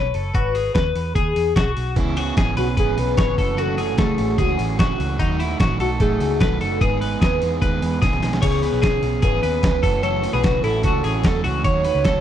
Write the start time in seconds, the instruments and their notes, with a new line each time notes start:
Already playing: picked electric bass B1, clean electric guitar B4, soft synth lead C#5
0.14 picked electric bass F#1, clean electric guitar A4, open hi-hat
0.33 picked electric bass G#1, clean electric guitar F#4, soft synth lead B4, kick, closed hi-hat
0.55 clean electric guitar G#4, open hi-hat
0.74 picked electric bass D#2, soft synth lead B4, clean electric guitar B4, kick, snare, closed hi-hat
0.95 picked electric bass E2, open hi-hat
1.14 picked electric bass D#2, soft synth lead G#4, clean electric guitar G#4, kick, closed hi-hat
1.36 picked electric bass E2, open hi-hat
1.56 picked electric bass B1, clean electric guitar F#4, kick, snare, closed hi-hat
1.77 picked electric bass B1, open hi-hat
1.96 picked electric bass C#2, overdriven electric guitar C#3 E3 B3 C#4 G#4, clean electric guitar E4, kick, closed hi-hat
2.16 overdriven electric guitar B3 C#4 G#4, clean electric guitar F#4, open hi-hat
2.37 picked electric bass G#1, overdriven electric guitar C#3 E3 B3 C#4 G#4, clean electric guitar G#4, kick, snare, closed hi-hat
2.57 picked electric bass B1, overdriven electric guitar B3 C#4 G#4, soft synth lead F#4, clean electric guitar B4, open hi-hat
2.77 picked electric bass G#1, overdriven electric guitar E3 B3 C#4 G#4, soft synth lead G#4, clean electric guitar B4, kick, closed hi-hat
2.97 picked electric bass B1, overdriven electric guitar B3 C#4 G#4, soft synth lead B4, open hi-hat
3.17 picked electric bass G#1, overdriven electric guitar C#3 E3 B3 C#4 G#4, clean electric guitar C#5, kick, snare, closed hi-hat
3.37 picked electric bass F#1, overdriven electric guitar E3 A3 C#4 F#4, clean electric guitar A4, kick, open hi-hat
3.56 overdriven electric guitar F#2 C#3 E3 A3 C#4 F#4, clean electric guitar F#4, soft synth lead A4, closed hi-hat
3.77 overdriven electric guitar E3 A3 C#4 F#4, clean electric guitar G#4, open hi-hat
3.97 picked electric bass C#2, overdriven electric guitar F#2 C#3 E3 A3 C#4 F#4, clean electric guitar A3, soft synth lead G#4, kick, snare, closed hi-hat
4.17 picked electric bass A1, overdriven electric guitar E3 A3 C#4 F#4, open hi-hat
4.37 picked electric bass C#2, overdriven electric guitar E3 A3 C#4 F#4, soft synth lead F#4, clean electric guitar G#4, kick, closed hi-hat
4.57 picked electric bass A1, overdriven electric guitar E3 A3 C#4 F#4, open hi-hat
4.78 overdriven electric guitar F#2 C#3 E3 A3 C#4 F#4, clean electric guitar F#4, kick, snare, closed hi-hat
4.98 picked electric bass C#2, overdriven electric guitar E3 A3 C#4 F#4, open hi-hat
5.18 picked electric bass D#2, overdriven electric guitar D#3 F#3 A3 D#4 F#4, clean electric guitar D#4, kick, closed hi-hat
5.38 overdriven electric guitar A3 D#4 F#4, clean electric guitar E4, open hi-hat
5.59 picked electric bass A1, overdriven electric guitar D#3 F#3 A3 D#4 F#4, clean electric guitar F#4, kick, snare, closed hi-hat
5.79 picked electric bass B1, overdriven electric guitar A3 D#4 F#4, soft synth lead F#4, clean electric guitar A4, open hi-hat
5.99 picked electric bass A1, overdriven electric guitar F#3 A3 D#4 F#4, clean electric guitar A3, soft synth lead G#4, kick, closed hi-hat
6.20 picked electric bass C#2, overdriven electric guitar A3 D#4 F#4, open hi-hat
6.40 picked electric bass B1, overdriven electric guitar D#3 F#3 A3 D#4 F#4, soft synth lead A4, clean electric guitar B4, kick, snare, closed hi-hat
6.60 picked electric bass F#1, overdriven electric guitar A3 D#4 F#4, clean electric guitar A4, open hi-hat
6.80 picked electric bass G#1, overdriven electric guitar G#2 D#3 G#3 B3 D#4 G#4, clean electric guitar G#4, soft synth lead B4, kick, closed hi-hat
7.01 overdriven electric guitar G#3 B3 D#4 G#4, clean electric guitar B4, open hi-hat
7.21 picked electric bass D#2, overdriven electric guitar G#2 D#3 G#3 B3 D#4 G#4, clean electric guitar G#4, kick, snare, closed hi-hat
7.41 picked electric bass E2, overdriven electric guitar G#3 B3 D#4 G#4, open hi-hat
7.61 picked electric bass D#2, overdriven electric guitar G#3 B3 D#4 G#4, clean electric guitar B4, kick, closed hi-hat
7.81 picked electric bass E2, overdriven electric guitar G#3 B3 D#4 G#4, open hi-hat
8.02 picked electric bass B1, overdriven electric guitar G#2 D#3 G#3 B3 D#4 G#4, clean electric guitar G#4, kick, snare, closed hi-hat
8.13 snare
8.22 picked electric bass B1, overdriven electric guitar G#3 B3 D#4 G#4, snare, open hi-hat
8.33 snare
8.42 picked electric bass C#2, overdriven electric guitar C#3 E3 B3 C#4 G#4, soft synth lead G#4, clean electric guitar C#5, kick, closed hi-hat, crash
8.62 overdriven electric guitar B3 C#4 G#4, clean electric guitar B4, open hi-hat
8.72 picked electric bass B1
8.82 overdriven electric guitar C#3 E3 B3 C#4 G#4, clean electric guitar G#4, kick, snare, closed hi-hat
9.02 picked electric bass B1, overdriven electric guitar B3 C#4 G#4, open hi-hat
9.22 picked electric bass G#1, overdriven electric guitar E3 B3 C#4 G#4, clean electric guitar G#4, soft synth lead B4, kick, closed hi-hat
9.43 picked electric bass D#2, overdriven electric guitar B3 C#4 G#4, clean electric guitar B4, open hi-hat
9.63 picked electric bass C#2, overdriven electric guitar C#3 E3 B3 C#4 G#4, kick, snare, closed hi-hat
9.83 picked electric bass F#1, overdriven electric guitar E3 A3 C#4 F#4, clean electric guitar A4, kick, open hi-hat
10.03 overdriven electric guitar F#2 C#3 E3 A3 C#4 F#4, clean electric guitar A4, soft synth lead C#5, closed hi-hat
10.22 overdriven electric guitar E3 A3 C#4 F#4, open hi-hat
10.33 picked electric bass B1, clean electric guitar G#4, soft synth lead B4
10.43 overdriven electric guitar F#2 C#3 E3 A3 C#4 F#4, clean electric guitar F#4, kick, snare, closed hi-hat
10.63 picked electric bass A1, overdriven electric guitar E3 A3 C#4 F#4, clean electric guitar E4, soft synth lead A4, open hi-hat
10.83 picked electric bass C#2, overdriven electric guitar E3 A3 C#4 F#4, clean electric guitar F#4, soft synth lead A4, kick, closed hi-hat
11.03 picked electric bass A1, overdriven electric guitar E3 A3 C#4 F#4, clean electric guitar G#4, open hi-hat
11.23 picked electric bass E2, overdriven electric guitar F#2 C#3 E3 A3 C#4 F#4, clean electric guitar A4, kick, snare, closed hi-hat
11.44 picked electric bass C#2, overdriven electric guitar E3 A3 C#4 F#4, clean electric guitar F#4, open hi-hat
11.64 picked electric bass D#2, overdriven electric guitar D#3 F#3 A3 D#4 F#4, soft synth lead C#5, clean electric guitar C#5, kick, closed hi-hat
11.84 overdriven electric guitar A3 D#4 F#4, clean electric guitar B4, open hi-hat
11.95 picked electric bass C#2
12.04 overdriven electric guitar D#3 F#3 A3 D#4 F#4, clean electric guitar A4, kick, snare, closed hi-hat